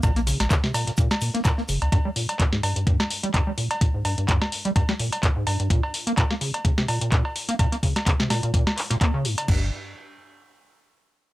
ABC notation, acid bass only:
X:1
M:4/4
L:1/16
Q:"Swing 16ths" 1/4=127
K:Bbmix
V:1 name="Acid bass" clef=bass
B,, B, _D, z D, C, B,, B,, B,, z2 B, B,, B, D, z | G,, G, B,, z B,, A,, G,, G,, G,, z2 G, G,, G, B,, z | B,, A,, G,, G,, G,, z2 G, G,, G, B,, z B,, A,, G,, G,, | B,, z2 B, B,, B, _D, z D, C, B,, B,, B,, z2 B, |
B,, B, _D, z D, C, B,, B,, B,, z2 B,, B, D, A,, z | G,,2 z12 z2 |]